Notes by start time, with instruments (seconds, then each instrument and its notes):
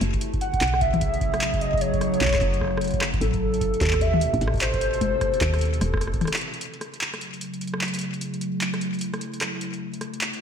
Already playing: ambient pad B2 A3 E4
0.01 fm bass F#1, ambient pad C#3, closed hi-hat
0.14 ambient pad F#3, kick, closed hi-hat
0.21 ambient pad G#4, closed hi-hat
0.34 kick, closed hi-hat
0.41 soft synth lead F#5, closed hi-hat
0.54 kick, closed hi-hat
0.61 fm bass B1, clap, closed hi-hat
0.67 closed hi-hat
0.74 cross-stick
0.81 soft synth lead E5, kick, closed hi-hat
0.94 closed hi-hat, high tom
1.01 kick, closed hi-hat
1.14 closed hi-hat
1.21 kick, closed hi-hat
1.34 cross-stick, closed hi-hat
1.41 clap, closed hi-hat
1.54 kick, closed hi-hat
1.61 soft synth lead D#5, closed hi-hat
1.74 kick, closed hi-hat
1.81 soft synth lead C#5, closed hi-hat
1.94 kick, closed hi-hat
2.01 cross-stick, closed hi-hat
2.14 closed hi-hat
2.21 fm bass B1, kick, clap, closed hi-hat
2.25 kick, clap
2.28 kick, clap
2.34 kick, cross-stick, clap, closed hi-hat
2.39 fm bass F#1, kick, clap
2.41 kick, closed hi-hat
2.54 closed hi-hat
2.61 kick, cross-stick
2.64 cross-stick
2.67 cross-stick
2.71 cross-stick
2.77 cross-stick, closed hi-hat
2.84 closed hi-hat
2.88 closed hi-hat
2.91 kick, closed hi-hat
2.94 closed hi-hat
3.01 cross-stick, clap
3.14 kick, closed hi-hat
3.21 fm bass A1, ambient pad C3, soft synth lead A4, closed hi-hat
3.34 kick, closed hi-hat
3.44 ambient pad B2
3.54 closed hi-hat
3.61 kick, closed hi-hat
3.74 closed hi-hat
3.81 fm bass D#2, kick, clap, closed hi-hat
3.84 ambient pad A4, kick, clap
3.88 clap
3.91 kick, cross-stick, clap, closed hi-hat
3.97 soft synth lead E5, kick
4.01 kick, closed hi-hat
4.14 high tom
4.21 closed hi-hat
4.34 fm bass A1, kick, closed hi-hat
4.41 fm bass A1, closed hi-hat
4.48 cross-stick
4.54 kick, closed hi-hat
4.56 closed hi-hat
4.58 closed hi-hat
4.59 soft synth lead C5, clap, closed hi-hat
4.61 closed hi-hat
4.74 kick, closed hi-hat
4.81 closed hi-hat
4.94 closed hi-hat
5.01 kick, closed hi-hat, high tom
5.21 kick, cross-stick, closed hi-hat
5.34 closed hi-hat
5.41 fm bass D#2, kick, clap, closed hi-hat
5.54 cross-stick, closed hi-hat
5.59 closed hi-hat
5.61 closed hi-hat
5.74 closed hi-hat
5.81 fm bass E1, cross-stick, closed hi-hat
5.94 kick, cross-stick
5.97 cross-stick
6.01 cross-stick, closed hi-hat
6.07 cross-stick
6.14 kick, closed hi-hat
6.21 cross-stick, closed hi-hat, high tom
6.25 cross-stick, closed hi-hat
6.28 cross-stick
6.34 cross-stick, clap, closed hi-hat
6.37 ambient pad C#3, closed hi-hat
6.41 ambient pad F#3, closed hi-hat
6.48 ambient pad A3
6.54 closed hi-hat
6.61 closed hi-hat
6.65 ambient pad E4
6.74 closed hi-hat
6.81 cross-stick, closed hi-hat
6.94 closed hi-hat
7.01 clap, closed hi-hat
7.14 cross-stick, closed hi-hat
7.18 ambient pad G#4, closed hi-hat
7.34 closed hi-hat
7.41 closed hi-hat
7.54 closed hi-hat
7.61 closed hi-hat
7.67 closed hi-hat
7.74 cross-stick
7.81 clap, closed hi-hat
7.85 closed hi-hat
7.88 closed hi-hat
7.94 closed hi-hat
7.99 closed hi-hat
8.01 closed hi-hat
8.14 closed hi-hat
8.21 closed hi-hat
8.34 closed hi-hat
8.41 closed hi-hat
8.61 clap, closed hi-hat
8.74 cross-stick, closed hi-hat
8.81 closed hi-hat
8.94 closed hi-hat
8.99 closed hi-hat
9.01 closed hi-hat
9.14 cross-stick, closed hi-hat
9.21 closed hi-hat
9.34 closed hi-hat
9.41 cross-stick, clap, closed hi-hat
9.61 ambient pad C3, closed hi-hat
9.74 closed hi-hat
9.89 ambient pad B3
9.94 closed hi-hat
10.01 cross-stick, closed hi-hat
10.14 closed hi-hat
10.21 clap, closed hi-hat
10.34 closed hi-hat